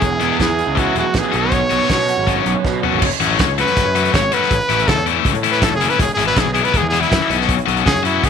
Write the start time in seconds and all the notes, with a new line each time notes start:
Already playing: B3 G#4
0.02 E1 E3, kick, closed hi-hat
0.20 E1 E3 G#3 B3 E4, closed hi-hat
0.39 E2 E4 G#4, kick, snare, closed hi-hat
0.59 G#4, closed hi-hat
0.67 C#2
0.75 E3 G#3 B3 E4 F#4, kick, closed hi-hat
0.95 E1 F#3, closed hi-hat
0.99 F#4
1.14 A1 B3, kick, snare, closed hi-hat
1.19 G#4
1.32 B1 B2 F#3 B3 C#4 F#4, closed hi-hat
1.37 C#5
1.52 B2, kick, closed hi-hat
1.70 B1 F#3 B3 C#4 F#4, closed hi-hat
1.89 B2 C#4, kick, snare, closed hi-hat
2.08 F#4, closed hi-hat
2.17 G#1
2.27 F#3 B3 C#4 F#4, kick, closed hi-hat
2.46 B1 F#3, closed hi-hat
2.64 B2 B3, kick, snare
2.84 F#3 B3 C#4 F#4, floor tom
2.93 G#1
3.02 F#1, kick, crash
3.11 closed hi-hat
3.20 A1 F#3 A3 C#4 F#4, closed hi-hat
3.39 C#2, kick, snare, closed hi-hat
3.47 C#2
3.58 F#3 A3 C#4 F#4 B4, closed hi-hat
3.68 closed hi-hat
3.77 F#1, kick, closed hi-hat
3.86 F#2
3.95 F#3 A3 C#4 F#4, closed hi-hat
4.05 closed hi-hat
4.14 G#1 C#5, kick, snare, closed hi-hat
4.32 F#3 A3 C#4 F#4 B4, closed hi-hat
4.43 snare
4.51 A1, kick, closed hi-hat
4.61 closed hi-hat
4.69 A1 E3 A3 C#4 E4, closed hi-hat
4.79 closed hi-hat
4.87 C#2 A4, kick, snare, closed hi-hat
4.97 E2, closed hi-hat
5.06 E3 A3 C#4 E4, closed hi-hat
5.25 C#2, kick, closed hi-hat
5.34 A2, closed hi-hat
5.43 E3 A3 C#4 E4, closed hi-hat
5.52 B4
5.62 A4, kick, snare, closed hi-hat
5.71 F#1
5.75 G#4
5.81 E3 A3 C#4 E4, closed hi-hat
5.89 B4, closed hi-hat
5.99 E1 G#4, kick, closed hi-hat
6.14 G#1 B3 E4 G#4
6.18 E3 G#3, closed hi-hat
6.27 B4
6.36 B1 G#4, kick, snare, closed hi-hat
6.45 B1
6.53 E3 G#3 B3 E4 G#4, closed hi-hat
6.64 B4, closed hi-hat
6.74 E1 G#4, kick, closed hi-hat
6.83 E2
6.89 E4 G#4
6.93 E3 G#3 B3, closed hi-hat
7.01 E4, closed hi-hat
7.12 F#2, kick, snare, closed hi-hat
7.30 B1 F#3 B3 C#4 F#4, closed hi-hat
7.41 snare
7.49 kick, closed hi-hat
7.58 closed hi-hat
7.66 B1 F#3 B3 C#4 F#4, closed hi-hat
7.77 closed hi-hat
7.86 C#2 G#4, kick, snare, closed hi-hat
7.96 F#2, closed hi-hat
8.03 F#3 B3 C#4 E4 F#4, closed hi-hat
8.23 C#2 G#4, kick, closed hi-hat